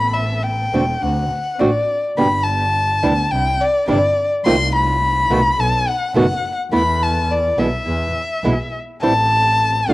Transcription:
Already playing: A1 B3 C4 A4 B5
0.14 E5
0.43 G5
0.73 E1 D3 A3 B3 C4 F#4 A4
1.02 D2 C4 D4 F#4 F#5
1.59 A1 D3 A3 C4 D4 F#4 D5
2.17 G1 B2 D3 G3 B3 D4 G4 B5
2.44 A5
3.03 D2 C3 E3 G3 B3 D4 E4 G4
3.31 C2 C4 D4 E4 G5
3.61 D5
3.88 G1 C3 E3 G3 C4 D4 E4 D5
4.45 C2 C3 D#3 A3 C4 D#4 F4 C6
4.76 B5
5.30 C2 B2 D#3 A3 B3 D#4 F4 F#4
5.58 B1 B3 D#4 A4 A5
5.88 F#5
6.15 F#1 B2 D#3 A3 B3 D#4 F#4 A4 F#5
6.72 E2 E3 A3 B3 E4 A4 B5
7.03 A5
7.31 D5
7.57 B1 B2 E3 G#3 B3 E4 A4 E5
7.86 E2 B3 E4 G#4
8.44 B1 B2 E3 G#3 B3 E4 G#4
9.02 A1 E3 G3 C4 E4 G4 A4 A5
9.88 E1 D3 A3 C4 D4 F4 G4 A4 F5

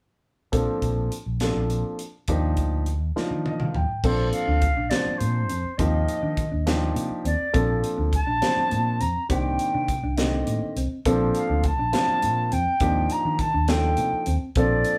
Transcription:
0.52 A#1 F3 A#3 C4 D4 A4, kick, closed hi-hat
0.82 A#1, kick, closed hi-hat
1.12 closed hi-hat
1.26 A#1
1.40 F3 A#3 C4 D4 A4, snare, closed hi-hat
1.55 A#1
1.70 closed hi-hat
1.99 closed hi-hat
2.28 D#2 F3 A#3 D4 D#4 G4, kick, closed hi-hat
2.57 D2, kick, closed hi-hat
2.86 closed hi-hat
3.01 D#2
3.16 F3 A#3 D4 D#4 F4, snare
3.31 D#3
3.46 D#5, high tom
3.60 D#3 F5, mid tom
3.75 D#2 G5, mid tom
4.04 A#1 F3 A#3 C4 D4 A4 C5, kick, crash
4.31 F5, closed hi-hat
4.47 D2 D4
4.62 kick, closed hi-hat
4.77 A#1 D4
4.89 F3 A#3 C4 D4 C5 D5, snare, closed hi-hat
5.06 muted fretless electric bass stroke
5.18 A#2 A#3 C5, closed hi-hat
5.50 F2 C4, closed hi-hat
5.65 muted fretless electric bass stroke
5.77 D#2 F3 A#3 C4 D#4 F4 G4 D#5, kick, closed hi-hat
6.08 closed hi-hat
6.23 D#3 D4
6.37 kick, closed hi-hat
6.52 D#2 D4
6.67 F3 A#3 D4 D#4 G4, snare, closed hi-hat
6.96 C3 A#3, closed hi-hat
7.10 muted fretless electric bass stroke
7.25 D#2 C4 D5, closed hi-hat
7.54 A#1 F3 A#3 C4 D4 A4, kick, closed hi-hat
7.84 closed hi-hat
7.98 D2 D4
8.13 A5, kick, closed hi-hat
8.27 A#1 D4
8.42 F3 A#3 C4 D4 C5, snare, closed hi-hat
8.57 muted fretless electric bass stroke
8.71 A#2 A#3, closed hi-hat
9.00 F2 C4 A#5, closed hi-hat
9.16 muted fretless electric bass stroke
9.29 C2 D#3 A#3 C4 D4 G4 G5, kick, closed hi-hat
9.59 closed hi-hat
9.74 C3 D4
9.88 kick, closed hi-hat
10.03 C2 D4
10.16 D3 D#3 A#3 C4 G4 D#5, snare, closed hi-hat
10.47 A2 A#3, closed hi-hat
10.62 muted fretless electric bass stroke
10.76 C2 C4, closed hi-hat
11.05 A#1 F3 A#3 C4 D4 A4, kick, closed hi-hat
11.35 F5, closed hi-hat
11.49 D2 D4
11.64 A5, kick, closed hi-hat
11.79 A#1 D4
11.93 F3 A#3 C4 D4 F4, snare, closed hi-hat
12.08 muted fretless electric bass stroke
12.22 A#2 A#3, closed hi-hat
12.52 F2 C4 G5, closed hi-hat
12.67 muted fretless electric bass stroke
12.80 D#2 F3 A#3 C4 D4 D#4 G4, kick, closed hi-hat
13.10 A#5, closed hi-hat
13.25 D#3 D4
13.39 A5, kick, closed hi-hat
13.54 D#2 D4
13.68 F3 A#3 D4 D#4 A4 G5, snare, closed hi-hat
13.97 C3 A#3, closed hi-hat
14.13 muted fretless electric bass stroke
14.26 D#2 C4, closed hi-hat
14.55 A#1 F3 A#3 C4 D4 A4 D5, kick, closed hi-hat
14.85 closed hi-hat

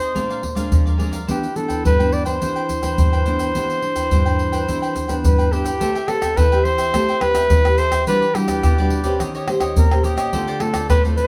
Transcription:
Already playing: C3 C4 D#4 G#4 C5
0.00 G#4 C5 D#5, pandeiro, shaker, surdo
0.15 A#2 G#3 C4 D4 G#4 A#4 D5 F5, pandeiro, shaker, surdo
0.29 A#4 D5 F5, pandeiro, shaker
0.43 muted cavaquinho stroke, pandeiro, surdo
0.55 G#3 C4 D4 A#4 D5 F5, pandeiro, shaker, surdo
0.72 F3, pandeiro, shaker, surdo
0.86 A#4 D5 F5, pandeiro, shaker
0.98 G#3 C4 D4 G#4 A#4 D5 F5, pandeiro
1.12 A#4 D5 F5, pandeiro, shaker, surdo
1.27 C3 E3 B3 D4 E4 G4 B4 C5 G5, pandeiro, shaker, surdo
1.43 pandeiro, shaker
1.55 E3 B3 D4 A4, muted cavaquinho stroke, pandeiro, shaker
1.68 B4 C5 G5, pandeiro, shaker, surdo
1.84 G2 E4 B4 C5 G5, pandeiro, shaker, surdo
1.99 E3 B3 D4 B4 C5 G5, pandeiro, shaker
2.12 D5, pandeiro
2.25 E3 B3 D4 B4 C5 G5, pandeiro, shaker, surdo
2.41 C3 E3 D4 E4 B4 C5 G5, pandeiro, shaker, surdo
2.56 B4 C5 G5, pandeiro, shaker
2.69 muted cavaquinho stroke, pandeiro, shaker, surdo
2.82 E3 D4 B4 C5 G5, pandeiro, shaker, surdo
2.98 G2, pandeiro, shaker, surdo
3.12 B4 C5 G5, pandeiro, shaker
3.25 E3 B3 D4 E4 B4 C5 G5, pandeiro, shaker
3.39 B4 C5 G5, pandeiro, shaker, surdo
3.55 C3 E3 B3 D4 E4 B4 C5 G5, pandeiro, shaker, surdo
3.70 pandeiro, shaker
3.82 E3 D4, muted cavaquinho stroke, pandeiro
3.96 B4 C5 G5, pandeiro, shaker, surdo
4.11 G2 E4 B4 C5 G5, pandeiro, shaker, surdo
4.25 E3 D4 B4 C5 G5, pandeiro, shaker
4.39 pandeiro
4.52 B4 C5 G5, pandeiro, shaker, surdo
4.68 C3 E3 D4 E4 B4 C5 G5, pandeiro, shaker, surdo
4.82 B4 C5 G5, pandeiro, shaker
4.95 muted cavaquinho stroke, pandeiro, shaker, surdo
5.08 E3 B3 D4 B4 C5 G5, pandeiro, shaker, surdo
5.24 G2 B4, pandeiro, shaker, surdo
5.38 B4 C5 G5, pandeiro, shaker
5.51 E3 B3 D4 E4 G4 B4 C5 G5, pandeiro
5.65 B4 C5 G5, pandeiro, shaker, surdo
5.80 A3 C4 G4 A4 B4 C5 E5 G5, pandeiro, shaker, surdo
5.95 C5 E5 G5, pandeiro, shaker
6.08 C4 G4 A4 B4, muted cavaquinho stroke, pandeiro, tamborim
6.21 C5 E5 G5, pandeiro, tamborim, shaker, surdo
6.37 E3 A4 B4 C5 E5 G5, pandeiro, tamborim, shaker, surdo
6.52 C4 G4 B4 C5 E5 G5, pandeiro, shaker
6.64 C5, pandeiro
6.78 C5 E5 G5, pandeiro, shaker, surdo
6.94 A3 C4 G4 A4 B4 C5 E5 G5, pandeiro, tamborim, shaker, surdo
7.08 C5 E5 G5, pandeiro, shaker
7.21 C4 G4 B4, muted cavaquinho stroke, pandeiro, tamborim, surdo
7.35 E5 G5, pandeiro, tamborim, shaker, surdo
7.50 E3, pandeiro, shaker, surdo
7.65 C4 G4 B4, pandeiro, tamborim, shaker
7.77 A4 C5 E5 G5, pandeiro, shaker
7.91 C5 E5 G5, pandeiro, tamborim, shaker, surdo
8.07 E3 G3 D4 E4 F#4 G4 B4 D5, pandeiro, shaker, surdo
8.21 G4 B4 D5, pandeiro, shaker
8.35 G3 D4 F#4 G4, muted cavaquinho stroke, pandeiro, tamborim, shaker
8.47 G4 B4 D5, pandeiro, tamborim, shaker, surdo
8.63 E4 G4 B4 D5, pandeiro, tamborim, shaker, surdo
8.78 G3 D4 F#4 G4 B4 D5, pandeiro, shaker
8.90 pandeiro
9.04 C#4 G4 B4 C5 D5, pandeiro, shaker, surdo
9.19 D#3 D#4 G4 C#5 D#5, pandeiro, tamborim, shaker, surdo
9.35 G4 C#5 D#5, pandeiro, shaker
9.48 C#4 G4 C5, muted cavaquinho stroke, pandeiro, tamborim
9.60 G4 C#5 D#5, pandeiro, tamborim, shaker, surdo
9.77 A#2 A#4, pandeiro, shaker, surdo
9.91 C#4 G4 C5, pandeiro, tamborim, shaker
10.03 D#4 G4 C#5 D#5, pandeiro, shaker
10.17 G4 C#5 D#5, pandeiro, tamborim, shaker, surdo
10.33 D3 A3 C4 F4 A4 C5 D5, pandeiro, shaker, surdo
10.47 A4 C5 D5, pandeiro, shaker
10.60 A3 C4 F4 A4, muted cavaquinho stroke, pandeiro, tamborim
10.74 A4 C5 D5, pandeiro, tamborim, shaker, surdo
10.90 A2 F4 A4 B4 C5 D5, pandeiro, tamborim, shaker, surdo
11.04 A3 C4 F4 A4 C5 D5, pandeiro, shaker
11.17 C5, pandeiro, shaker

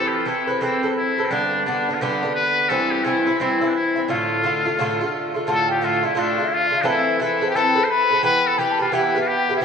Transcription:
Already playing: E3 C4 A4 B4
0.08 G4
0.14 F4
0.25 E3 C4 E4 A4 B4
0.47 C4 A4 B4
0.61 E3 C4 A4 B4
0.83 C4 A4 B4
0.97 E4
1.18 C4 A4 B4
1.26 C4
1.31 G2 D3 B3 D4
1.66 G2 D3 B3 D4
1.89 D3 B3 D4
1.94 F4
2.01 G2 D3 B3 D4 G4
2.23 D3 B3 D4
2.35 B4
2.69 G2 E3 C4 E4 A4
2.91 G4
3.04 G2 E3 C4 E4
3.27 E3 C4 E4
3.39 G2 E3 C4 E4
3.61 E3 C4 E4
3.68 D4
3.75 E4
3.96 E3 C4 E4
4.04 E4
4.08 A2 D3 A3 F4
4.43 A2 D3 A3 F4
4.65 D3 A3 F4
4.79 A2 D3 A3 F4
5.01 D3 A3 F4
5.34 D3 A3 F4
5.47 A2 D3 A3 F4 A5
5.51 A4
5.68 G4 G5
5.81 A2 D3 A3 F4 F5
6.03 D3 A3 E4 F4 E5
6.15 A2 D3 A3 D4 F4 D5
6.38 D3 A3 F4
6.44 E4 E5
6.51 F4 F5
6.70 D3 A3 F4
6.82 E3 C4 D4 A4 B4
6.87 E4 E5
7.20 E3 C4 E4 A4 B4 E5
7.41 C4 A4 B4
7.48 G4 G5
7.55 E3 C4 A4 B4 A5
7.76 C4 A4 B4
7.84 C5
7.90 B4 B5
8.11 C4 A4 B4
8.23 E3 B3 G4 B4 B5
8.47 A4
8.58 E3 B3 G4 B4 G5
8.71 A5
8.79 B3 F4 G4 B4 G5
8.92 E3 B3 E4 G4 B4 E5
9.15 B3 G4 B4
9.22 F4
9.27 G4 G5
9.49 B3 G4 B4
9.56 E4 E5
9.61 E3

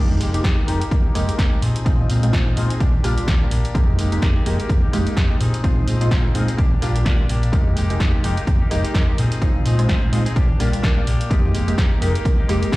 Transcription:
Already playing: F2 G#3 A#3 D#4 G4
0.00 G4
0.20 F1 G#3 A#3 D#4 G4, open hi-hat
0.33 G#3 A#3 D#4 G4, closed hi-hat
0.44 F2 G#3 A#3 D#4 G4, kick, snare, closed hi-hat
0.67 F1 G#3 A#3 D#4 G4, open hi-hat
0.81 A#3 D#4 G4, closed hi-hat
0.91 F2, kick, closed hi-hat
1.04 A#3 D#4 G4, muted fingered electric bass stroke
1.14 F1 G#3 A#3 D#4 G4, cross-stick, open hi-hat
1.28 A#3 D#4 G4, muted fingered electric bass stroke, closed hi-hat
1.38 F2 G#3 A#3 D#4 G4, kick, snare, closed hi-hat
1.52 G#3 A#3 D#4 G4
1.61 A#2 F3 C4 D#4 G#4, open hi-hat
1.76 closed hi-hat
1.85 A#1 F3 G#3 C4 D#4 F4 G#4, kick, closed hi-hat
1.99 shaker
2.09 A#2 F3 C4 D#4 G#4, open hi-hat
2.23 G#3 C4 D#4 F4, closed hi-hat
2.33 A#1 F3 C4 D#4 G#4, kick, snare, closed hi-hat
2.56 A#2 F3 G#3 C4 D#4 F4 G#4, open hi-hat
2.69 C4 D#4 G#4, closed hi-hat
2.80 D#2 A#3 D4 G4, kick, closed hi-hat
2.93 D4 G4, muted fingered electric bass stroke
3.03 A#1 G3 A#3 D4 F4 G4, cross-stick, open hi-hat
3.17 D4 G4, muted fingered electric bass stroke, closed hi-hat
3.27 D#2 A#3 D4 G4, kick, snare, closed hi-hat
3.41 G3 A#3 D4 F4
3.51 A#1 A#3 D4 G4, open hi-hat
3.65 closed hi-hat
3.74 F2 G#3 A#3 D#4 G4, kick, closed hi-hat
3.88 shaker
3.98 F1 G#3 A#3 D#4 G4, open hi-hat
4.12 G#3 A#3 D#4 G4, closed hi-hat
4.22 F2 G#3 A#3 D#4 G4, kick, snare, closed hi-hat
4.45 F1 G#3 A#3 D#4 G4, open hi-hat
4.59 A#3 D#4 G4, closed hi-hat
4.69 F2, kick, closed hi-hat
4.82 A#3 D#4 G4, muted fingered electric bass stroke
4.92 F1 G#3 A#3 D#4 G4, cross-stick, open hi-hat
5.06 A#3 D#4 G4, muted fingered electric bass stroke, closed hi-hat
5.16 F2 G#3 A#3 D#4 G4, kick, snare, closed hi-hat
5.30 G#3 A#3 D#4 G4
5.40 A#2 F3 C4 D#4 G#4, open hi-hat
5.54 closed hi-hat
5.63 A#1 F3 G#3 C4 D#4 F4 G#4, kick, closed hi-hat
5.78 shaker
5.87 A#2 F3 C4 D#4 G#4, open hi-hat
6.01 G#3 C4 D#4 F4, closed hi-hat
6.10 A#1 F3 C4 D#4 G#4, kick, snare, closed hi-hat
6.25 cross-stick
6.34 A#2 F3 G#3 C4 D#4 F4 G#4, open hi-hat
6.47 C4 D#4 G#4, closed hi-hat
6.57 D#2 A#3 D4 G4, kick, closed hi-hat
6.71 D4 G4, muted fingered electric bass stroke, shaker
6.81 A#1 G3 A#3 D4 F4 G4, cross-stick, open hi-hat
6.94 D4 G4, closed hi-hat
7.05 D#2 A#3 D4 G4, kick, snare, closed hi-hat
7.19 G3 A#3 D4 F4
7.28 A#1 A#3 D4 G4, open hi-hat
7.43 closed hi-hat
7.52 F2 G#3 A#3 D#4 G4, kick, closed hi-hat
7.67 shaker
7.76 F1 G#3 A#3 D#4 G4, open hi-hat
7.90 G#3 A#3 D#4 G4, closed hi-hat
7.99 F2 G#3 A#3 D#4 G4, kick, snare, closed hi-hat
8.23 F1 G#3 A#3 D#4 G4, open hi-hat
8.36 A#3 D#4 G4, closed hi-hat
8.47 F2, kick, closed hi-hat
8.60 A#3 D#4 G4, muted fingered electric bass stroke
8.70 F1 G#3 A#3 D#4 G4, cross-stick, open hi-hat
8.83 A#3 D#4 G4, muted fingered electric bass stroke, closed hi-hat
8.94 F2 G#3 A#3 D#4 G4, kick, snare, closed hi-hat
9.08 G#3 A#3 D#4 G4
9.17 A#2 F3 C4 D#4 G#4, open hi-hat, shaker
9.32 closed hi-hat
9.41 A#1 F3 G#3 C4 D#4 F4 G#4, kick, closed hi-hat
9.55 shaker
9.65 A#2 F3 C4 D#4 G#4, open hi-hat
9.78 G#3 C4 D#4 F4, closed hi-hat
9.89 A#1 F3 C4 D#4 G#4, kick, snare, closed hi-hat
10.12 A#2 F3 G#3 C4 D#4 F4 G#4, open hi-hat, shaker
10.25 C4 D#4 G#4, closed hi-hat
10.36 D#2 A#3 D4 G4, kick, closed hi-hat
10.49 D4 G4, muted fingered electric bass stroke
10.59 A#1 G3 A#3 D4 F4 G4, cross-stick, open hi-hat
10.73 D4 G4, muted fingered electric bass stroke, closed hi-hat
10.83 D#2 A#3 D4 G4, kick, snare, closed hi-hat
10.97 G3 A#3 D4 F4
11.06 A#1 A#3 D4 G4, open hi-hat
11.21 closed hi-hat, shaker
11.30 F2 G#3 A#3 D#4 G4, kick, closed hi-hat
11.44 shaker
11.54 F1 G#3 A#3 D#4 G4, open hi-hat, shaker
11.67 G#3 A#3 D#4 G4, closed hi-hat, shaker
11.77 F2 G#3 A#3 D#4 G4, kick, snare, closed hi-hat
12.01 F1 G#3 A#3 D#4 G4, open hi-hat
12.14 A#3 D#4 G4, closed hi-hat, shaker
12.25 F2, kick, closed hi-hat, shaker
12.38 A#3 D#4 G4, muted fingered electric bass stroke
12.48 F1 G#3 A#3 D#4 G4, cross-stick, open hi-hat, shaker
12.62 A#3 D#4 G4, muted fingered electric bass stroke, closed hi-hat
12.72 F2 G#3 A#3, kick, snare, closed hi-hat

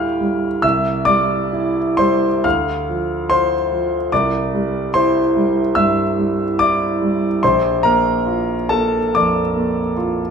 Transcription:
Already playing: A2 G3 E4 E5 F5 G5 E6 F6 G6
0.21 G3
0.62 C2 E5 E6
1.05 G3 D5 D6
1.52 E4
1.97 G3 C5 C6
2.44 D2 F5 F6
2.89 F3
3.30 F4 C5 C6
3.72 F3
4.12 C2 D5 D6
4.54 G3
4.94 E4 C5 C6
5.36 G3
5.75 G2 E5 E6
6.19 G3
6.59 E4 D5 D6
7.02 G3
7.43 A#1 C5 C6
7.83 A#3 A#4 A#5
8.27 F4
8.69 A#3 A4 A5
9.15 F2 D5 D6
9.56 A#3
9.97 F4

